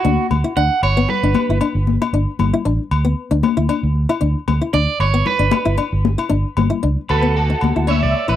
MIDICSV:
0, 0, Header, 1, 7, 480
1, 0, Start_track
1, 0, Tempo, 523104
1, 758, Time_signature, 4, 2, 24, 8
1, 7673, End_track
2, 0, Start_track
2, 0, Title_t, "Clean electric guitar"
2, 0, Program_c, 0, 27
2, 0, Note_on_c, 0, 66, 83
2, 239, Note_off_c, 0, 66, 0
2, 521, Note_on_c, 0, 78, 96
2, 752, Note_off_c, 0, 78, 0
2, 765, Note_on_c, 0, 73, 91
2, 994, Note_off_c, 0, 73, 0
2, 1006, Note_on_c, 0, 71, 95
2, 1448, Note_off_c, 0, 71, 0
2, 4349, Note_on_c, 0, 74, 108
2, 4584, Note_off_c, 0, 74, 0
2, 4594, Note_on_c, 0, 73, 95
2, 4826, Note_off_c, 0, 73, 0
2, 4833, Note_on_c, 0, 71, 95
2, 5279, Note_off_c, 0, 71, 0
2, 6520, Note_on_c, 0, 69, 83
2, 6746, Note_off_c, 0, 69, 0
2, 7235, Note_on_c, 0, 73, 70
2, 7359, Note_off_c, 0, 73, 0
2, 7366, Note_on_c, 0, 74, 69
2, 7596, Note_off_c, 0, 74, 0
2, 7609, Note_on_c, 0, 71, 62
2, 7673, Note_off_c, 0, 71, 0
2, 7673, End_track
3, 0, Start_track
3, 0, Title_t, "Clean electric guitar"
3, 0, Program_c, 1, 27
3, 6512, Note_on_c, 1, 71, 88
3, 6520, Note_on_c, 1, 66, 65
3, 6737, Note_off_c, 1, 71, 0
3, 6742, Note_off_c, 1, 66, 0
3, 6757, Note_on_c, 1, 69, 86
3, 6761, Note_on_c, 1, 66, 70
3, 7204, Note_off_c, 1, 69, 0
3, 7207, Note_off_c, 1, 66, 0
3, 7252, Note_on_c, 1, 76, 94
3, 7260, Note_on_c, 1, 73, 72
3, 7673, Note_off_c, 1, 73, 0
3, 7673, Note_off_c, 1, 76, 0
3, 7673, End_track
4, 0, Start_track
4, 0, Title_t, "Steel-string acoustic guitar"
4, 0, Program_c, 2, 25
4, 41, Note_on_c, 2, 62, 81
4, 197, Note_off_c, 2, 62, 0
4, 406, Note_on_c, 2, 64, 71
4, 478, Note_off_c, 2, 64, 0
4, 519, Note_on_c, 2, 62, 79
4, 675, Note_off_c, 2, 62, 0
4, 890, Note_on_c, 2, 59, 69
4, 1045, Note_off_c, 2, 59, 0
4, 1133, Note_on_c, 2, 62, 69
4, 1286, Note_off_c, 2, 62, 0
4, 1376, Note_on_c, 2, 64, 67
4, 1445, Note_off_c, 2, 64, 0
4, 1478, Note_on_c, 2, 62, 80
4, 1633, Note_off_c, 2, 62, 0
4, 1960, Note_on_c, 2, 62, 75
4, 2115, Note_off_c, 2, 62, 0
4, 2326, Note_on_c, 2, 64, 72
4, 2398, Note_off_c, 2, 64, 0
4, 2434, Note_on_c, 2, 62, 80
4, 2590, Note_off_c, 2, 62, 0
4, 2795, Note_on_c, 2, 59, 71
4, 2954, Note_off_c, 2, 59, 0
4, 3036, Note_on_c, 2, 62, 76
4, 3194, Note_off_c, 2, 62, 0
4, 3275, Note_on_c, 2, 64, 73
4, 3350, Note_off_c, 2, 64, 0
4, 3387, Note_on_c, 2, 62, 74
4, 3545, Note_off_c, 2, 62, 0
4, 3755, Note_on_c, 2, 64, 69
4, 3830, Note_off_c, 2, 64, 0
4, 3860, Note_on_c, 2, 62, 82
4, 4020, Note_off_c, 2, 62, 0
4, 4235, Note_on_c, 2, 64, 72
4, 4309, Note_off_c, 2, 64, 0
4, 4343, Note_on_c, 2, 62, 81
4, 4502, Note_off_c, 2, 62, 0
4, 4714, Note_on_c, 2, 59, 72
4, 4872, Note_off_c, 2, 59, 0
4, 4947, Note_on_c, 2, 62, 75
4, 5108, Note_off_c, 2, 62, 0
4, 5187, Note_on_c, 2, 64, 72
4, 5264, Note_off_c, 2, 64, 0
4, 5299, Note_on_c, 2, 62, 84
4, 5460, Note_off_c, 2, 62, 0
4, 5671, Note_on_c, 2, 64, 78
4, 5747, Note_off_c, 2, 64, 0
4, 5776, Note_on_c, 2, 62, 83
4, 5938, Note_off_c, 2, 62, 0
4, 6147, Note_on_c, 2, 64, 72
4, 6225, Note_off_c, 2, 64, 0
4, 6266, Note_on_c, 2, 62, 80
4, 6425, Note_off_c, 2, 62, 0
4, 6629, Note_on_c, 2, 59, 61
4, 6791, Note_off_c, 2, 59, 0
4, 7120, Note_on_c, 2, 64, 60
4, 7195, Note_off_c, 2, 64, 0
4, 7223, Note_on_c, 2, 62, 72
4, 7384, Note_off_c, 2, 62, 0
4, 7598, Note_on_c, 2, 64, 63
4, 7673, Note_off_c, 2, 64, 0
4, 7673, End_track
5, 0, Start_track
5, 0, Title_t, "Fingered electric bass"
5, 0, Program_c, 3, 33
5, 46, Note_on_c, 3, 38, 83
5, 149, Note_off_c, 3, 38, 0
5, 283, Note_on_c, 3, 38, 85
5, 387, Note_off_c, 3, 38, 0
5, 520, Note_on_c, 3, 38, 91
5, 625, Note_off_c, 3, 38, 0
5, 758, Note_on_c, 3, 31, 85
5, 955, Note_off_c, 3, 31, 0
5, 1131, Note_on_c, 3, 31, 87
5, 1220, Note_off_c, 3, 31, 0
5, 1369, Note_on_c, 3, 31, 93
5, 1459, Note_off_c, 3, 31, 0
5, 1605, Note_on_c, 3, 31, 92
5, 1802, Note_off_c, 3, 31, 0
5, 1954, Note_on_c, 3, 31, 84
5, 2060, Note_off_c, 3, 31, 0
5, 2197, Note_on_c, 3, 31, 93
5, 2302, Note_off_c, 3, 31, 0
5, 2439, Note_on_c, 3, 33, 85
5, 2543, Note_off_c, 3, 33, 0
5, 2673, Note_on_c, 3, 38, 86
5, 2870, Note_off_c, 3, 38, 0
5, 3040, Note_on_c, 3, 38, 85
5, 3132, Note_off_c, 3, 38, 0
5, 3281, Note_on_c, 3, 38, 94
5, 3373, Note_off_c, 3, 38, 0
5, 3516, Note_on_c, 3, 38, 95
5, 3715, Note_off_c, 3, 38, 0
5, 3870, Note_on_c, 3, 38, 92
5, 3977, Note_off_c, 3, 38, 0
5, 4111, Note_on_c, 3, 38, 94
5, 4217, Note_off_c, 3, 38, 0
5, 4348, Note_on_c, 3, 38, 89
5, 4456, Note_off_c, 3, 38, 0
5, 4586, Note_on_c, 3, 31, 93
5, 4785, Note_off_c, 3, 31, 0
5, 4950, Note_on_c, 3, 31, 88
5, 5046, Note_off_c, 3, 31, 0
5, 5195, Note_on_c, 3, 31, 95
5, 5289, Note_off_c, 3, 31, 0
5, 5438, Note_on_c, 3, 31, 93
5, 5637, Note_off_c, 3, 31, 0
5, 5789, Note_on_c, 3, 31, 89
5, 5897, Note_off_c, 3, 31, 0
5, 6030, Note_on_c, 3, 31, 99
5, 6138, Note_off_c, 3, 31, 0
5, 6272, Note_on_c, 3, 37, 95
5, 6379, Note_off_c, 3, 37, 0
5, 6514, Note_on_c, 3, 38, 78
5, 6910, Note_off_c, 3, 38, 0
5, 6996, Note_on_c, 3, 38, 91
5, 7102, Note_off_c, 3, 38, 0
5, 7123, Note_on_c, 3, 38, 68
5, 7367, Note_on_c, 3, 37, 82
5, 7381, Note_off_c, 3, 38, 0
5, 7459, Note_off_c, 3, 37, 0
5, 7604, Note_on_c, 3, 33, 89
5, 7673, Note_off_c, 3, 33, 0
5, 7673, End_track
6, 0, Start_track
6, 0, Title_t, "Muted steel-string acoustic guitar strokes"
6, 1850, Note_on_c, 9, 29, 72
6, 1942, Note_off_c, 9, 29, 0
6, 6880, Note_on_c, 9, 29, 62
6, 6972, Note_off_c, 9, 29, 0
6, 7673, End_track
7, 0, Start_track
7, 0, Title_t, "Drums"
7, 47, Note_on_c, 9, 62, 28
7, 47, Note_on_c, 9, 63, 68
7, 138, Note_off_c, 9, 62, 0
7, 138, Note_off_c, 9, 63, 0
7, 282, Note_on_c, 9, 63, 70
7, 283, Note_on_c, 9, 68, 65
7, 374, Note_off_c, 9, 63, 0
7, 374, Note_off_c, 9, 68, 0
7, 521, Note_on_c, 9, 62, 29
7, 612, Note_off_c, 9, 62, 0
7, 760, Note_on_c, 9, 62, 29
7, 762, Note_on_c, 9, 68, 68
7, 851, Note_off_c, 9, 62, 0
7, 854, Note_off_c, 9, 68, 0
7, 996, Note_on_c, 9, 64, 64
7, 1088, Note_off_c, 9, 64, 0
7, 1233, Note_on_c, 9, 63, 98
7, 1238, Note_on_c, 9, 68, 65
7, 1325, Note_off_c, 9, 63, 0
7, 1330, Note_off_c, 9, 68, 0
7, 1475, Note_on_c, 9, 68, 68
7, 1567, Note_off_c, 9, 68, 0
7, 1718, Note_on_c, 9, 62, 30
7, 1718, Note_on_c, 9, 63, 73
7, 1810, Note_off_c, 9, 62, 0
7, 1810, Note_off_c, 9, 63, 0
7, 1852, Note_on_c, 9, 68, 67
7, 1943, Note_off_c, 9, 68, 0
7, 2194, Note_on_c, 9, 63, 72
7, 2194, Note_on_c, 9, 64, 68
7, 2198, Note_on_c, 9, 68, 65
7, 2286, Note_off_c, 9, 63, 0
7, 2286, Note_off_c, 9, 64, 0
7, 2290, Note_off_c, 9, 68, 0
7, 2429, Note_on_c, 9, 62, 30
7, 2521, Note_off_c, 9, 62, 0
7, 2673, Note_on_c, 9, 62, 30
7, 2674, Note_on_c, 9, 68, 70
7, 2765, Note_off_c, 9, 62, 0
7, 2765, Note_off_c, 9, 68, 0
7, 3149, Note_on_c, 9, 63, 101
7, 3153, Note_on_c, 9, 68, 67
7, 3241, Note_off_c, 9, 63, 0
7, 3245, Note_off_c, 9, 68, 0
7, 3386, Note_on_c, 9, 68, 71
7, 3478, Note_off_c, 9, 68, 0
7, 3627, Note_on_c, 9, 62, 32
7, 3719, Note_off_c, 9, 62, 0
7, 3760, Note_on_c, 9, 68, 63
7, 3852, Note_off_c, 9, 68, 0
7, 3874, Note_on_c, 9, 62, 30
7, 3965, Note_off_c, 9, 62, 0
7, 4108, Note_on_c, 9, 68, 68
7, 4110, Note_on_c, 9, 63, 83
7, 4200, Note_off_c, 9, 68, 0
7, 4202, Note_off_c, 9, 63, 0
7, 4344, Note_on_c, 9, 62, 30
7, 4436, Note_off_c, 9, 62, 0
7, 4589, Note_on_c, 9, 62, 33
7, 4590, Note_on_c, 9, 68, 64
7, 4681, Note_off_c, 9, 62, 0
7, 4681, Note_off_c, 9, 68, 0
7, 4825, Note_on_c, 9, 64, 69
7, 4917, Note_off_c, 9, 64, 0
7, 5060, Note_on_c, 9, 63, 104
7, 5069, Note_on_c, 9, 68, 69
7, 5151, Note_off_c, 9, 63, 0
7, 5161, Note_off_c, 9, 68, 0
7, 5303, Note_on_c, 9, 68, 68
7, 5395, Note_off_c, 9, 68, 0
7, 5550, Note_on_c, 9, 62, 35
7, 5550, Note_on_c, 9, 63, 86
7, 5642, Note_off_c, 9, 62, 0
7, 5642, Note_off_c, 9, 63, 0
7, 5680, Note_on_c, 9, 68, 65
7, 5772, Note_off_c, 9, 68, 0
7, 6027, Note_on_c, 9, 68, 63
7, 6034, Note_on_c, 9, 63, 83
7, 6034, Note_on_c, 9, 64, 75
7, 6118, Note_off_c, 9, 68, 0
7, 6126, Note_off_c, 9, 63, 0
7, 6126, Note_off_c, 9, 64, 0
7, 6279, Note_on_c, 9, 62, 35
7, 6371, Note_off_c, 9, 62, 0
7, 6507, Note_on_c, 9, 68, 59
7, 6523, Note_on_c, 9, 62, 25
7, 6599, Note_off_c, 9, 68, 0
7, 6614, Note_off_c, 9, 62, 0
7, 6761, Note_on_c, 9, 62, 23
7, 6853, Note_off_c, 9, 62, 0
7, 6985, Note_on_c, 9, 68, 64
7, 7010, Note_on_c, 9, 63, 79
7, 7076, Note_off_c, 9, 68, 0
7, 7102, Note_off_c, 9, 63, 0
7, 7232, Note_on_c, 9, 68, 57
7, 7253, Note_on_c, 9, 63, 66
7, 7324, Note_off_c, 9, 68, 0
7, 7344, Note_off_c, 9, 63, 0
7, 7500, Note_on_c, 9, 62, 24
7, 7591, Note_off_c, 9, 62, 0
7, 7606, Note_on_c, 9, 68, 59
7, 7673, Note_off_c, 9, 68, 0
7, 7673, End_track
0, 0, End_of_file